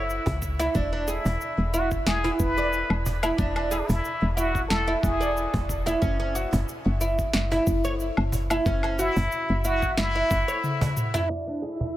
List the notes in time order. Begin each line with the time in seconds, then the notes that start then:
Already playing: F#1 E4
0.10 cabasa
0.26 C#2, cajon bass, kick, cajon slap
0.42 kick, cabasa
0.59 E4, cajon slap, cabasa
0.75 E1 D4, kick, cabasa
0.93 D4
1.08 E4 G#4, cajon slap, cabasa
1.25 E1, cajon bass, cabasa
1.41 cabasa
1.58 E1
1.74 E4 F#4, cabasa
1.91 kick, cabasa
2.06 E1 G#4, snare, cabasa
2.24 E4, cajon slap
2.40 E1 B4, kick, cabasa
2.57 D5, cabasa
2.73 cabasa
2.90 E1, low woodblock
3.06 cajon bass, cabasa
3.23 E4, cabasa, low woodblock
3.38 E1 D4, kick, cabasa
3.56 D4, low woodblock
3.71 E4 G#4, cajon slap, cabasa
3.79 D4
3.86 E1 E4, cajon bass, cabasa
4.05 cabasa
4.22 E1
4.36 E4 F#4, cabasa
4.55 kick, cabasa
4.68 E1 A4, snare, cabasa
4.88 E4
5.02 E1 G#4, kick, cajon slap, cabasa
5.21 D5, cabasa
5.37 cabasa
5.54 E1, kick, cajon bass, cajon slap
5.69 kick, cabasa
5.86 E4, cajon slap, cabasa
6.02 F#1 C#4, kick, cabasa
6.20 C#4
6.35 F#4, cajon slap, cabasa
6.53 F#1, cajon bass, cabasa
6.69 cabasa
6.86 F#1
7.01 E4, cabasa
7.19 kick, cabasa
7.33 F#1, snare, cabasa
7.51 E4, cajon slap
7.67 F#1, kick, cabasa
7.84 C#5, cabasa
8.00 cabasa
8.17 F#1, low woodblock
8.32 cajon bass, cabasa
8.50 E4, cabasa, low woodblock
8.66 F#1 C#4, kick, cabasa
8.83 C#4, low woodblock
8.98 E4 F#4, cajon slap, cabasa
9.16 F#1, cajon bass, cabasa
9.32 cabasa
9.50 F#1
9.65 E4 F#4, cabasa
9.82 kick, cabasa
9.97 F#1 E4, snare, cabasa
10.16 E4
10.31 F#1, kick, cajon slap, cabasa
10.48 C#5, cabasa
10.64 high tom, cabasa
10.81 cajon bass, cajon slap, high tom
10.97 mid tom, cabasa
11.14 E4, cajon slap, mid tom, cabasa
11.30 D4 E4 E5
11.47 D4
11.62 E4 G#4, cajon slap
11.81 cajon bass